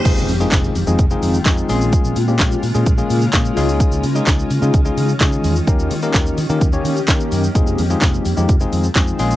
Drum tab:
CC |x---------------|----------------|----------------|----------------|
HH |x-o-x-o-x-o-x-o-|x-o-x-o-x-o-x-o-|x-o-x-o-x-o-x-o-|x-o-x-o-x-o-x-o-|
SH |xxxxxxxxxxxxxxxx|xxxxxxxxxxxxxxxx|xxxxxxxxxxxxxxxx|xxxxxxxxxxxxxxxx|
CP |----x-------x---|----x-------x---|----x-------x---|----x-------x---|
SD |----o-------o---|----o-------o---|----o-------o---|----o-------o---|
BD |o---o---o---o---|o---o---o---o---|o---o---o---o---|o---o---o---o---|

CC |----------------|
HH |x-o-x-o-x-o-x-o-|
SH |xxxxxxxxxxxxxxxx|
CP |----x-------x---|
SD |----o-------o---|
BD |o---o---o---o---|